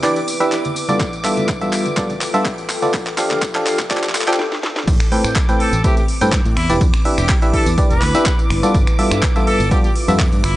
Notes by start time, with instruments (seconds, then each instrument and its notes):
Already playing: ambient pad E4 B4 D5 G5, string machine D6
0.03 fm electric piano E3 D4 G4 B4 D5, clap, closed hi-hat, tambourine
0.16 closed hi-hat, tambourine
0.28 open hi-hat, tambourine
0.40 fm electric piano E3 D4 G4 B4 E5, closed hi-hat, tambourine
0.52 clap, closed hi-hat, tambourine
0.64 closed hi-hat, tambourine, high conga
0.76 ambient pad F4, open hi-hat, tambourine
0.83 ambient pad A4
0.88 fm electric piano G2 B3 F4 A4 D5, closed hi-hat, tambourine, high conga
1.00 ambient pad E5, kick, clap, closed hi-hat, tambourine
1.13 closed hi-hat, tambourine
1.24 fm electric piano G2 B3 F4 A4 E5, clap, open hi-hat, tambourine
1.37 closed hi-hat, tambourine, high conga
1.48 kick, clap, closed hi-hat, tambourine
1.61 fm electric piano G2 B3 F4 A4 E5, ambient pad G5, closed hi-hat, tambourine
1.72 clap, open hi-hat, tambourine
1.86 closed hi-hat, tambourine, high conga
1.97 fm electric piano G2 B3 F4 A4 D5, kick, clap, closed hi-hat, tambourine
2.09 closed hi-hat, tambourine, high conga
2.21 clap, open hi-hat, tambourine
2.34 fm electric piano G2 B3 F4 A4 E5, closed hi-hat, tambourine
2.45 kick, clap, closed hi-hat, tambourine
2.58 closed hi-hat, tambourine
2.70 clap, open hi-hat, tambourine
2.82 fm electric piano B3 F4 A4 D5, closed hi-hat, tambourine, high conga
2.94 kick, clap, closed hi-hat, tambourine
3.06 clap, closed hi-hat, tambourine
3.17 fm electric piano F3 D4 G4 A4 F5, ambient pad D5, clap, open hi-hat, tambourine
3.31 clap, tambourine, high conga
3.42 kick, clap, closed hi-hat, tambourine
3.55 fm electric piano F3 D4 G4 A4 F5, clap, closed hi-hat, tambourine
3.66 clap, open hi-hat, tambourine
3.79 kick, clap, closed hi-hat, tambourine, high conga
3.91 fm electric piano F3 D4 G4 A4 D5, kick, clap, closed hi-hat, tambourine
3.97 clap
4.03 clap, closed hi-hat, tambourine
4.09 clap
4.15 clap, open hi-hat, tambourine
4.21 clap
4.28 fm electric piano F3 D4 G4 A4 G5, clap, closed hi-hat, tambourine
4.33 clap
4.39 snare
4.52 snare
4.63 snare
4.76 snare
4.87 fingered electric bass A1, ambient pad C4, string machine D6, kick, closed hi-hat, tambourine, crash
5.00 finger snap, closed hi-hat, tambourine
5.12 fm electric piano A2 C4 A4 B4 G5, open hi-hat
5.24 fingered electric bass A2, finger snap, tambourine
5.36 kick, clap, closed hi-hat, tambourine
5.49 fm electric piano A2 C4 A4 B4 G5, closed hi-hat, tambourine
5.60 trumpet A4, ambient pad B4, open hi-hat
5.73 fingered electric bass A1, closed hi-hat, tambourine
5.84 fm electric piano A2 C4 A4 B4 E5, trumpet G4, kick, closed hi-hat, tambourine
5.97 trumpet G4, closed hi-hat, tambourine
6.08 open hi-hat
6.21 fingered electric bass G2, fm electric piano A2 C4 A4 B4 G5, closed hi-hat, tambourine
6.32 kick, clap, closed hi-hat, tambourine
6.45 fingered electric bass A2, closed hi-hat, tambourine
6.57 fingered electric bass E2, trumpet E4, ambient pad E4, finger snap, open hi-hat
6.70 fingered electric bass E1, fm electric piano E3 D4 G4 B4 D5, closed hi-hat, tambourine
6.81 fingered electric bass E2, kick, closed hi-hat, tambourine
6.94 finger snap, closed hi-hat, tambourine
7.05 fm electric piano E3 D4 G4 B4 E5, open hi-hat
7.18 fingered electric bass E1, trumpet G4, finger snap, closed hi-hat, tambourine
7.29 kick, clap, closed hi-hat, tambourine
7.42 fm electric piano E3 D4 G4 B4 E5, ambient pad D5, closed hi-hat, tambourine
7.54 trumpet A4, kick, open hi-hat
7.66 fingered electric bass E2, closed hi-hat, tambourine
7.78 fm electric piano E3 D4 G4 B4 D5, kick, closed hi-hat, tambourine
7.90 fingered electric bass E1, trumpet B4, closed hi-hat, tambourine
8.02 fingered electric bass D2, clap, open hi-hat
8.15 fm electric piano E3 D4 G4 B4 E5, closed hi-hat, tambourine
8.26 kick, clap, closed hi-hat, tambourine
8.39 closed hi-hat, tambourine
8.50 fingered electric bass G1, ambient pad F4, finger snap, open hi-hat
8.63 fm electric piano G2 B3 F4 A4 D5, closed hi-hat, tambourine
8.74 fingered electric bass G1, kick, closed hi-hat, tambourine
8.87 finger snap, closed hi-hat, tambourine
8.99 fm electric piano G2 B3 F4 A4 E5, open hi-hat
9.11 fingered electric bass G2, ambient pad E5, finger snap, closed hi-hat, tambourine
9.23 kick, clap, closed hi-hat, tambourine
9.36 fm electric piano G2 B3 F4 A4 E5, closed hi-hat, tambourine
9.47 trumpet A4, ambient pad A5, open hi-hat
9.60 fingered electric bass G1, closed hi-hat, tambourine
9.71 fm electric piano G2 B3 F4 A4 D5, trumpet G4, kick, closed hi-hat, tambourine
9.84 trumpet G4, closed hi-hat, tambourine
9.95 open hi-hat
10.08 fingered electric bass F2, fm electric piano G2 B3 F4 A4 E5, closed hi-hat, tambourine
10.19 kick, clap, closed hi-hat, tambourine
10.32 fingered electric bass G2, closed hi-hat, tambourine
10.44 fingered electric bass G1, trumpet E4, finger snap, open hi-hat